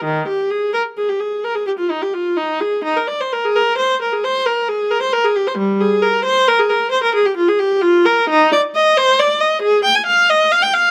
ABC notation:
X:1
M:12/8
L:1/16
Q:3/8=89
K:Bbmix
V:1 name="Viola"
E,2 G2 A2 B2 A G A2 B A G F E G F2 E2 A2 | E B d c B A B2 c2 B A c2 B2 A2 B c B A G c | G,2 A2 B2 c2 B A B2 c B A G F A G2 F2 B2 | [K:Eb] E2 d2 e2 c2 d2 e2 A2 g a f2 e2 f g f2 |]